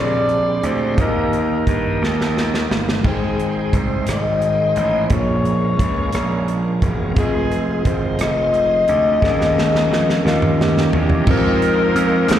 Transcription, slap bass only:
Already playing: A#1
0.63 D2
0.98 D#2
1.67 G2
2.02 D#2
2.71 G1
3.04 G#1
3.73 C2
4.08 G#1
4.76 A1
5.10 A#1
5.80 C#2
6.14 A#1
6.82 E1
7.17 F1
7.85 G#1
8.20 F1
8.89 D2
9.22 D#2
9.91 F2
10.25 D#2
10.93 E2
11.27 F2
11.95 F2
12.30 D#2

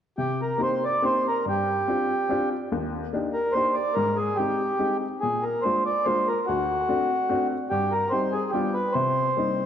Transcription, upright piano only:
0.18 C3
0.58 A#3 C4 D#4 G4
1.02 A#3 C4 D#4 G4
1.46 G2
1.88 C4 D4 F4 G4
2.29 C4 D4 F4 G4
2.72 D#2
3.13 A#3 D4 D#4 G4
3.55 A#3 D4 D#4 G4
3.96 G#2
4.38 G#3 C4 D#4 G4
4.79 G#3 C4 D#4 G4
5.23 A#2
5.64 G#3 A#3 D4 F4
6.06 G#3 A#3 D4 F4
6.49 D2
6.88 A3 C4 D4 F#4
7.29 A3 C4 D4 F#4
7.71 G2
8.11 G3 C4 D#4 G4
8.53 G3 B3 D4 F4
8.95 C3
9.37 G3 A#3 C4 D#4

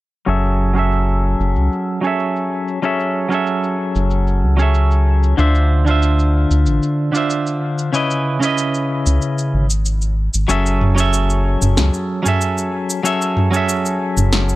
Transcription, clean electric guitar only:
0.26 F#3 C#4 G#4 A4 E5
0.73 F#3 C#4 G#4
0.78 A4 E5
2.01 F#3 C#4 G#4
2.05 A4 E5
2.82 F#3 C#4 G#4 A4 E5
3.29 F#3 C#4 G#4
3.33 A4 E5
4.57 F#3 C#4 G#4
4.61 A4 E5
5.37 D3 D4 F4 C5 E5
5.85 D3 D4 F4
5.89 C5 E5
7.12 D3 D4 F4
7.16 C5 E5
7.93 C#3 C#4 E4 B4 D#5
8.40 C#3 C#4 E4
8.44 B4 D#5
10.48 F#3 C#4 G#4 A4 E5
10.95 F#3 C#4 G#4
10.99 A4 E5
12.23 F#3 C#4 G#4
12.27 A4 E5
13.03 F#3 C#4 G#4 A4 E5
13.51 F#3 C#4 G#4
13.55 A4 E5

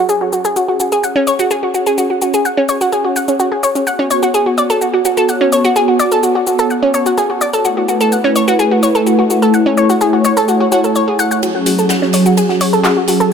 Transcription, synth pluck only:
0.09 G#4
0.21 F#4
0.33 F#4
0.45 G#4
0.56 F#4
0.68 F#4
0.80 F#4
0.92 G#4
1.04 F#5
1.16 C#4
1.27 C#5
1.39 F#4
1.51 G#4
1.63 F#4
1.74 F#4
1.87 G#4
1.98 F#4
2.10 F#4
2.22 F#4
2.34 G#4
2.45 F#5
2.57 C#4
2.69 C#5
2.81 F#4
2.92 G#4
3.05 F#4
3.16 F#5
3.28 C#4
3.40 F#4
3.52 G#4
3.63 C#5
3.75 C#4
3.87 F#5
3.99 C#4
4.11 C#5
4.23 F#4
4.34 G#4
4.46 F#4
4.58 D5
4.70 A4
4.81 F#4
4.94 F#4
5.05 F#4
5.17 A4
5.29 F#5
5.41 C#4
5.52 C#5
5.64 F#4
5.76 G#4
5.88 F#4
6.00 D5
6.12 A4
6.23 F#4
6.35 F#4
6.47 F#4
6.59 A4
6.70 F#5
6.83 C#4
6.94 C#5
7.06 F#4
7.18 G#4
7.30 F#4
7.41 D5
7.53 A4
7.65 F#4
7.77 F#4
7.88 F#4
8.01 A4
8.12 F#5
8.24 C#4
8.36 C#5
8.48 F#4
8.59 G#4
8.71 F#4
8.83 C#5
8.95 A4
9.07 F#4
9.19 F#4
9.30 F#4
9.42 A4
9.54 F#5
9.66 C#4
9.77 C#5
9.90 F#4
10.01 G#4
10.13 F#4
10.25 C#5
10.37 A4
10.48 F#4
10.60 F#4
10.72 F#4
10.84 A4
10.96 C#5
11.08 G#4
11.19 F#5
11.31 F#5
11.43 F#4
11.55 F#4
11.66 F#4
11.79 A4
11.90 F#5
12.02 C#4
12.14 C#5
12.26 F#4
12.37 G#4
12.49 F#4
12.61 C#5
12.73 A4
12.84 F#4
12.97 F#4
13.08 F#4
13.20 A4

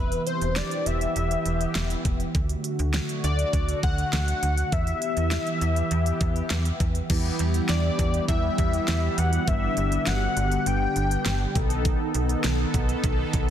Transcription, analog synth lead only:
Already playing: B4
0.27 C5
0.57 D5
0.86 E5
3.24 D5
3.84 F#5
4.13 F#5
4.73 E5
7.69 D5
8.29 E5
9.18 F#5
9.48 E5
10.07 F#5
10.67 G5

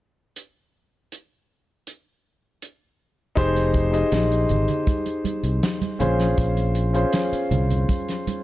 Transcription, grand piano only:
3.35 D#4 G4 G#4 C5
3.91 D#4 G4 G#4 D#5
5.99 C#4 F4 G#4 C5
6.93 C#4 F4 G#4 C5

